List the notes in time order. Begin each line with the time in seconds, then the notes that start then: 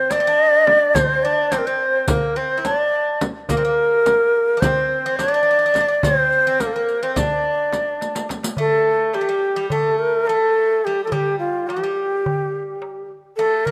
Already playing: C4 C5
0.10 D4 D5, riq, darbuka tek, frame drum
0.20 C4
0.27 D4
0.67 darbuka tek, frame drum
0.95 C4 C5, riq, darbuka dum, frame drum
1.23 D4 D5
1.52 C4 C5, riq, darbuka tek, frame drum
1.58 A#4
1.66 C4 C5
2.08 A#3 A#4, riq, darbuka dum, frame drum
2.36 C4 C5
2.57 E4
2.65 D4 D5, riq, darbuka tek, frame drum
3.21 riq, darbuka tek, frame drum
3.49 A#3 A#4, riq, darbuka dum, frame drum
3.57 C4
3.65 A#3
4.06 riq, darbuka tek, frame drum
4.57 D4 C5
4.62 C4, riq, frame drum, darbuka dum
5.06 C4
5.17 D4 D5, riq, darbuka tek, frame drum
5.28 D4
5.34 D4
5.43 D4
5.51 D4
5.59 D4
5.66 D4
5.74 D4, riq, darbuka tek, frame drum
5.81 D4
5.88 D4
6.03 C4 C5, riq, frame drum, darbuka dum
6.32 riq, darbuka ka
6.47 C4
6.60 A#3 A#4, riq, darbuka tek, frame drum
6.67 A4
6.73 A#3 A#4
6.88 riq, darbuka ka
7.03 C4 C5
7.16 D4 D5, riq, darbuka dum, frame drum
7.73 riq, darbuka tek, frame drum
8.01 riq, darbuka tek
8.15 riq, darbuka ka
8.29 riq, darbuka tek, frame drum
8.43 riq, darbuka ka
8.57 A3 A4, darbuka dum
9.13 G3 G4, darbuka tek
9.21 A3
9.29 G3
9.42 darbuka ka
9.56 G3
9.70 A3 A4, darbuka dum
9.99 A#4
10.27 A3 A4, darbuka tek
10.57 darbuka ka
10.85 G3 G4
11.04 F3 A4
11.12 G3 G4, darbuka dum
11.39 F4
11.68 G3 G4, darbuka tek
11.76 F3
11.83 G3
11.98 darbuka ka
12.26 darbuka dum
12.82 darbuka tek
13.10 darbuka ka
13.37 A3 A4, darbuka tek
13.65 A#3 A#4, darbuka dum